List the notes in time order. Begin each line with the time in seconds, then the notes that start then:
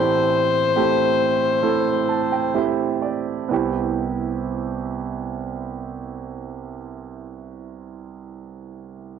Already playing: A2 E3 A3 C4 E4 G4 C5
0.76 A3 C4 E4 G4
1.63 A3 C4 E4 A4
2.09 A5
2.32 G5
2.54 A3 C4 E4 G4 E5
3.02 D5
3.49 C2 B3 C4 E4
3.53 G4